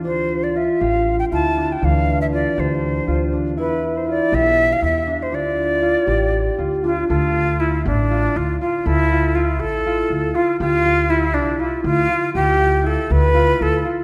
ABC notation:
X:1
M:7/8
L:1/16
Q:1/4=120
K:Ddor
V:1 name="Flute"
c3 d e2 f3 g a3 g | f3 e d2 c6 z2 | B3 c d2 e3 f e3 c | d12 F2 |
F4 E2 D4 F2 F2 | E4 F2 A6 F2 | F4 E2 D2 E2 F4 | G4 A2 B4 A2 z2 |]
V:2 name="French horn"
F8- F2 E4 | D12- D2 | E12 z2 | F6 G6 F2 |
z12 z2 | z12 z2 | z12 z2 | z12 z2 |]
V:3 name="Harp"
D4 F2 G4 F2 D2 | E,4 F2 G4 F2 D2 | E4 F2 G4 E2 D2 | D4 F2 G4 F2 D2 |
A2 F2 E4 F4 F2 | A2 F2 E4 F4 F2 | G2 F2 E4 F4 F2 | G2 F2 E4 F4 F2 |]
V:4 name="Upright bass" clef=bass
D,,6 A,,,4 D,,4 | D,,6 D,,4 D,,4 | E,,6 B,,,4 E,,4 | D,,6 A,,,4 D,,4 |
D,,6 A,,,4 D,,2 z2 | D,,6 A,,,4 D,,2 z2 | D,,6 C,,4 D,,2 z2 | D,,6 D,,4 D,,2 z2 |]